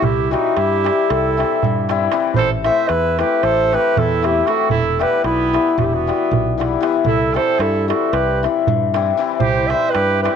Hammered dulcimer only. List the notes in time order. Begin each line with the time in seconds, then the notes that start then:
Already playing: E3 G3
0.31 E3 G3 C4 E4
0.84 E3 G3 C4 E4
1.37 E3 G3 C4 E4
1.89 E3 G3 C4 E4
2.12 E3 G3 C4 E4
2.64 E3 A3 C4 E4
3.18 E3 A3 C4 E4
3.72 E3 A3 C4 E4
4.22 E3 A3 C4 E4
4.47 E3 A3 C4 E4
4.99 E3 G3 B3 E4
5.53 E3 G3 B3 E4
6.07 E3 G3 B3 E4
6.57 E3 G3 B3 E4
6.80 E3 G3 B3 E4
7.34 E3 G3 C4 E4
7.88 E3 G3 C4 E4
8.43 E3 G3 C4 E4
8.94 E3 G3 C4 E4
9.17 E3 G3 C4 E4
9.71 E3 G3 C4 E4
10.24 E3 G3 C4 E4